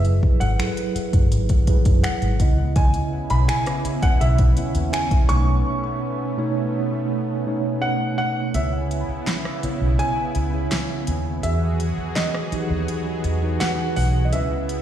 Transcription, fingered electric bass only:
0.00 0.19 F#1 loud
0.41 0.57 G#1 medium
0.95 muted fingered electric bass stroke soft
1.13 1.29 F#1 medium
1.31 1.63 G#1 loud
1.86 2.02 F#1 medium
2.22 2.38 G#1 medium
2.40 3.04 C#2 loud
3.31 3.47 B1 medium
3.85 muted fingered electric bass stroke soft
4.03 4.19 C#2 medium
4.21 4.53 B1 loud
4.75 4.91 D#2 medium
5.11 5.27 C#2 medium
5.29 5.61 B1 loud
8.55 9.02 C#2 loud
9.09 muted fingered electric bass stroke soft
9.63 muted fingered electric bass stroke soft
9.81 9.97 B1 medium
10.36 10.67 C#2 loud
11.08 11.40 D#2 medium
11.44 11.92 E2 medium
11.98 muted fingered electric bass stroke soft
12.52 muted fingered electric bass stroke soft
12.70 12.86 D#2 medium
13.25 13.56 E2 loud
13.97 14.33 B1 medium
14.33 14.81 C#2 loud

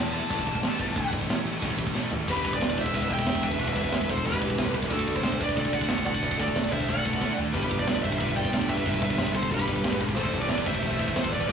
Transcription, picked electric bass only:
0.00 0.19 E2 loud
0.30 0.41 A1 loud
0.46 0.57 A1 medium
0.62 0.73 A1 medium
0.79 0.90 G1 loud
0.96 1.07 D2 loud
1.13 1.23 A1 medium
1.28 1.40 A1 medium
1.44 1.55 A1 medium
1.63 1.73 A1 loud
1.78 1.89 A1 medium
1.96 2.07 A1 medium
2.12 2.23 A1 loud
2.28 2.43 E1 medium
2.45 2.59 E1 medium
2.61 2.76 E1 medium
2.78 2.92 E1 medium
2.94 3.09 E1 loud
3.10 3.25 E1 medium
3.26 3.56 E1 medium
3.59 3.74 E1 loud
3.75 3.90 E1 medium
3.93 4.08 E1 medium
4.10 4.24 E1 loud
4.25 4.40 E1 loud
4.42 4.57 E1 medium
4.58 4.88 C2 loud
4.90 5.06 D2 loud
5.08 5.23 D2 medium
5.24 5.39 D2 loud
5.40 5.55 D2 medium
5.57 5.72 D2 loud
5.74 5.88 D2 medium
5.90 6.20 D2 loud
6.23 6.38 D2 loud
6.39 6.54 D2 medium
6.56 6.71 D2 loud
6.72 6.87 D2 medium
6.89 7.04 D2 loud
7.05 7.20 D2 medium
7.21 7.51 D2 medium
7.54 7.69 G1 loud
7.71 7.86 G1 medium
7.87 8.02 G1 medium
8.04 8.19 G1 medium
8.20 8.35 G1 medium
8.37 8.52 G1 medium
8.53 8.82 G1 medium
8.86 9.01 G1 loud
9.01 9.17 G1 medium
9.18 9.33 G1 medium
9.35 9.50 G1 loud
9.51 9.66 G1 loud
9.68 9.83 G1 medium
9.84 10.14 G#1 medium
10.17 10.32 A1 loud
10.33 10.48 A1 medium
10.50 10.65 A1 loud
10.66 10.81 A1 medium
10.83 10.98 A1 loud
10.99 11.14 A1 medium
11.16 11.45 A1 medium
11.49 11.52 A1 loud

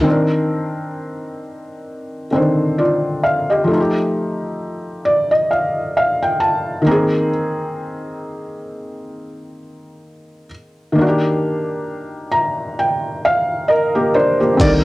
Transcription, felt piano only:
0.01 2.26 D#3 medium
0.01 2.28 C4 medium
0.07 2.29 D4 medium
0.07 2.31 A#4 medium
2.31 2.39 D3 soft
2.31 3.69 C4 soft
2.31 3.70 D4 soft
2.36 3.71 D#3 medium
2.36 2.80 C5 medium
2.78 3.22 F4 medium
2.78 3.21 D5 medium
3.23 3.48 F5 medium
3.50 3.79 G4 soft
3.50 3.93 D#5 soft
3.64 6.81 F3 medium
3.64 6.82 A3 medium
3.71 6.84 D#4 medium
3.71 3.79 F4 medium
3.80 6.89 G4 medium
5.05 5.29 D5 medium
5.31 5.49 D#5 medium
5.51 5.93 F5 medium
5.97 6.20 F5 medium
6.22 6.41 G5 medium
6.40 6.83 A5 medium
6.82 10.44 D#3 medium
6.82 10.46 A#3 medium
6.86 10.47 C4 medium
6.86 7.29 A#5 medium
6.91 10.49 G#4 medium
10.92 14.54 D#3 medium
10.92 13.64 A#3 medium
10.98 13.66 D4 medium
10.98 11.06 F#4 medium
11.08 13.71 G4 medium
12.31 12.74 A#5 medium
12.79 13.21 G5 medium
13.25 13.66 F5 medium
13.68 14.11 D#5 medium
13.95 14.14 A#3 soft
13.95 14.14 G4 medium
14.14 14.39 D4 medium
14.14 14.39 A#4 medium
14.14 14.57 D5 medium
14.40 14.84 A#3 soft
14.40 14.83 G4 medium
14.54 14.59 D3 soft
14.54 14.84 C4 medium
14.60 14.84 D3 medium
14.60 14.84 D#3 medium
14.60 14.84 A#4 medium

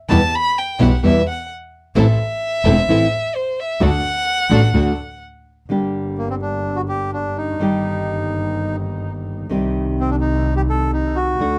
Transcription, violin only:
0.09 0.36 A5 loud
0.35 0.60 B5 loud
0.58 0.84 G5 medium
0.82 1.04 F#5 medium
1.05 1.26 E5 medium
1.29 1.49 F#5 medium
1.97 3.37 E5 loud
3.35 3.61 C5 medium
3.59 3.83 E5 medium
3.82 5.22 F#5 loud

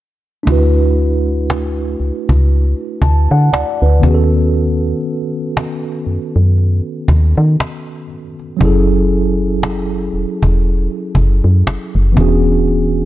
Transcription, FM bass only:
0.47 1.96 D2 loud
2.00 2.12 C#2 medium
2.29 2.74 C#2 medium
3.02 3.28 D2 medium
3.31 3.50 D3 loud
3.52 3.64 D2 soft
3.82 4.01 D2 medium
4.03 4.94 D#2 medium
6.07 6.18 F#2 soft
6.36 6.81 F#2 medium
7.08 7.34 D#2 loud
7.37 7.57 D#3 loud
8.61 10.09 F#1 loud
10.13 10.25 E1 medium
10.43 10.88 E1 medium
11.15 11.41 F#1 medium
11.44 11.63 F#2 loud
11.66 11.77 F#1 soft
11.95 12.14 F#1 loud
12.17 13.05 E1 loud

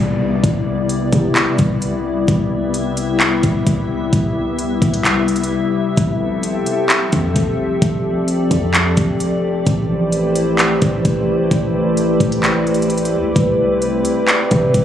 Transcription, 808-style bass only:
0.00 0.42 C2 loud
0.44 1.10 C2 loud
1.13 1.57 C3 loud
1.59 2.25 C2 loud
2.28 3.40 C2 loud
3.44 3.66 C2 loud
3.67 4.11 C2 loud
4.13 4.79 C2 loud
4.82 5.51 C2 loud
5.97 6.64 F1 loud
7.13 7.35 F2 loud
7.36 7.80 F1 loud
7.82 8.48 F1 loud
8.51 8.95 F2 loud
8.97 9.64 F1 loud
9.67 10.78 A1 loud
10.82 11.04 A1 loud
11.05 11.49 A1 loud
11.51 12.18 A1 loud
12.20 13.14 A1 loud
13.13 13.26 E2 loud
13.24 13.35 A1 medium
13.36 14.02 C2 loud
14.51 14.73 C3 loud
14.74 14.85 C2 loud

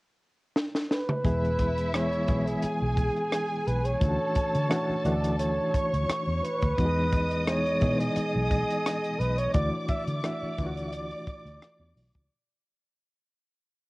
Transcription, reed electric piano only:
1.24 1.89 E3 medium
1.24 1.90 G#3 medium
1.24 1.90 B3 medium
1.24 1.90 E4 medium
1.24 1.90 G#4 medium
1.94 2.26 E3 medium
1.94 2.27 G#3 medium
1.94 2.27 B3 medium
1.94 2.27 E4 medium
1.94 2.27 G#4 medium
2.28 3.58 E3 medium
2.28 3.59 G#3 medium
2.28 3.59 B3 medium
2.28 3.59 E4 medium
2.28 3.59 G#4 medium
4.00 4.66 E3 medium
4.00 4.66 A3 medium
4.00 4.66 C#4 medium
4.00 4.67 D4 medium
4.00 4.09 F4 medium
4.08 4.70 F#4 medium
4.69 5.02 E3 medium
4.69 5.03 A3 medium
4.69 5.03 C#4 medium
4.69 5.03 D4 medium
4.69 5.03 F#4 medium
5.05 6.35 E3 medium
5.05 6.35 A3 medium
5.05 6.36 D4 medium
5.05 6.35 E4 medium
5.05 6.36 F#4 medium
6.77 7.43 E3 medium
6.77 7.43 G#3 medium
6.77 7.43 B3 medium
6.77 7.43 D#4 medium
6.77 6.85 F#4 medium
6.85 7.47 G#4 medium
7.46 7.79 E3 medium
7.46 7.80 G#3 medium
7.46 7.80 B3 medium
7.46 7.80 D#4 medium
7.46 7.80 G#4 medium
7.81 9.12 E3 medium
7.81 9.12 G#3 medium
7.81 9.12 B3 medium
7.81 9.12 D#4 medium
7.81 9.12 G#4 medium
9.54 10.20 E3 medium
9.54 10.20 A3 medium
9.54 10.20 D4 medium
9.54 10.20 E4 medium
9.54 10.20 F#4 medium
10.23 10.56 E3 medium
10.23 10.56 A3 medium
10.23 10.57 D4 medium
10.23 10.56 E4 medium
10.23 10.57 F#4 medium
10.58 11.88 E3 medium
10.58 11.88 A3 medium
10.58 11.89 D4 medium
10.58 11.88 E4 medium
10.58 10.66 F4 medium
10.66 11.92 F#4 medium

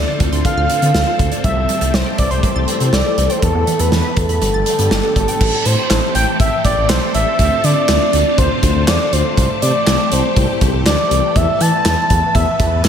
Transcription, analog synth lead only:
0.00 0.20 D5 medium
0.45 1.15 F5 loud
1.44 1.95 E5 loud
1.94 2.18 C5 loud
2.19 2.30 D5 loud
2.31 2.42 C5 medium
2.43 2.94 C5 loud
2.93 3.32 D5 loud
3.30 3.42 C5 medium
3.43 3.81 A4 medium
3.80 3.91 B4 medium
3.92 4.18 B4 medium
4.17 5.15 A4 medium
5.16 5.67 A4 loud
5.65 6.14 C5 loud
6.15 6.26 G5 loud
6.40 6.63 E5 loud
6.65 6.88 D5 loud
6.90 7.13 C5 loud
7.15 7.38 E5 loud
7.39 7.66 E5 loud
7.64 8.38 D5 loud
8.38 8.61 C5 medium
8.63 8.89 C5 medium
8.88 9.14 D5 loud
9.13 9.61 C5 loud
9.62 10.13 D5 loud
10.12 10.61 C5 medium
10.86 11.37 D5 medium
11.36 11.62 E5 loud
11.61 12.35 A5 loud
12.35 12.81 E5 medium

